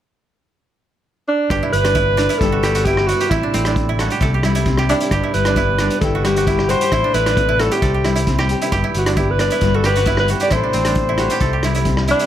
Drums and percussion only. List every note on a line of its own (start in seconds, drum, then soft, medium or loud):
1.50 kick medium
1.50 cross-stick medium
1.50 closed hi-hat soft
1.73 closed hi-hat soft
1.85 cross-stick medium
1.85 closed hi-hat soft
1.95 kick medium
1.95 closed hi-hat soft
2.18 cross-stick medium
2.18 closed hi-hat soft
2.30 closed hi-hat soft
2.41 kick medium
2.41 closed hi-hat soft
2.64 cross-stick medium
2.64 closed hi-hat soft
2.75 closed hi-hat medium
2.85 kick medium
2.85 closed hi-hat soft
2.97 cross-stick medium
3.09 closed hi-hat soft
3.21 closed hi-hat soft
3.31 kick medium
3.31 cross-stick medium
3.31 closed hi-hat soft
3.54 closed hi-hat soft
3.65 cross-stick medium
3.65 closed hi-hat soft
3.76 kick medium
3.76 closed hi-hat soft
3.99 cross-stick medium
3.99 closed hi-hat soft
4.10 closed hi-hat soft
4.21 kick medium
4.21 closed hi-hat soft
4.43 cross-stick medium
4.43 closed hi-hat soft
4.55 closed hi-hat soft
4.66 kick medium
4.66 closed hi-hat soft
4.78 cross-stick medium
4.89 closed hi-hat soft
5.00 closed hi-hat soft
5.11 kick medium
5.11 cross-stick medium
5.11 closed hi-hat soft
5.34 closed hi-hat soft
5.45 cross-stick medium
5.45 closed hi-hat soft
5.56 kick medium
5.56 closed hi-hat soft
5.79 cross-stick medium
5.79 closed hi-hat soft
5.90 closed hi-hat soft
6.01 kick medium
6.01 closed hi-hat soft
6.25 cross-stick medium
6.25 closed hi-hat soft
6.36 closed hi-hat soft
6.47 kick medium
6.47 closed hi-hat soft
6.59 cross-stick medium
6.69 closed hi-hat soft
6.81 closed hi-hat medium
6.92 kick medium
6.92 cross-stick medium
6.92 closed hi-hat soft
7.14 closed hi-hat soft
7.26 cross-stick medium
7.26 closed hi-hat soft
7.37 kick medium
7.37 closed hi-hat soft
7.60 cross-stick medium
7.60 closed hi-hat medium
7.72 closed hi-hat soft
7.82 kick medium
7.82 closed hi-hat soft
8.05 cross-stick medium
8.05 closed hi-hat soft
8.16 closed hi-hat soft
8.27 kick medium
8.27 closed hi-hat soft
8.39 cross-stick medium
8.49 closed hi-hat soft
8.62 closed hi-hat soft
8.72 kick medium
8.72 cross-stick medium
8.72 closed hi-hat soft
8.95 closed hi-hat soft
9.06 cross-stick medium
9.06 closed hi-hat soft
9.17 kick medium
9.17 closed hi-hat soft
9.39 cross-stick medium
9.39 closed hi-hat soft
9.50 closed hi-hat soft
9.61 kick medium
9.61 closed hi-hat soft
9.84 cross-stick medium
9.84 closed hi-hat soft
9.96 closed hi-hat soft
10.06 kick medium
10.06 closed hi-hat soft
10.17 cross-stick medium
10.28 closed hi-hat medium
10.40 closed hi-hat medium
10.51 kick medium
10.51 cross-stick medium
10.51 closed hi-hat soft
10.73 closed hi-hat soft
10.85 cross-stick medium
10.85 closed hi-hat medium
10.95 kick medium
10.95 closed hi-hat soft
11.18 cross-stick medium
11.18 closed hi-hat soft
11.30 closed hi-hat medium
11.40 kick medium
11.40 closed hi-hat soft
11.63 cross-stick medium
11.63 closed hi-hat soft
11.75 closed hi-hat soft
11.85 kick medium
11.85 closed hi-hat soft
11.97 cross-stick medium
12.08 closed hi-hat soft
12.19 closed hi-hat soft